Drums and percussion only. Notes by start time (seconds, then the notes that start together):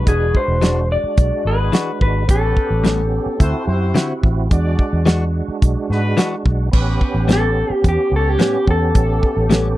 0.07 kick, closed hi-hat
0.35 kick
0.62 snare, closed hi-hat
1.18 kick, closed hi-hat
1.73 snare, closed hi-hat
2.01 kick
2.29 kick, closed hi-hat
2.57 kick
2.85 snare, closed hi-hat
3.40 kick, closed hi-hat
3.95 snare, closed hi-hat
4.23 kick
4.51 kick, closed hi-hat
4.79 kick
5.07 snare, closed hi-hat
5.62 kick, closed hi-hat
5.92 snare
6.18 snare, closed hi-hat
6.46 kick
6.73 kick, crash
7.01 kick
7.29 snare, closed hi-hat
7.84 kick, closed hi-hat
8.40 snare, closed hi-hat
8.67 kick
8.95 kick, closed hi-hat
9.23 kick
9.51 snare, closed hi-hat